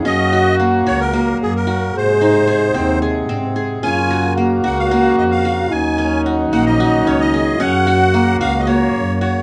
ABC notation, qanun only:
X:1
M:7/8
L:1/8
Q:1/4=111
K:Gblyd
V:1 name="Qanun"
D G B, G B,2 G- | G E A C A C A | D G B, G B,2 G- | G D G B, G D A |
D G B, G B,2 G |]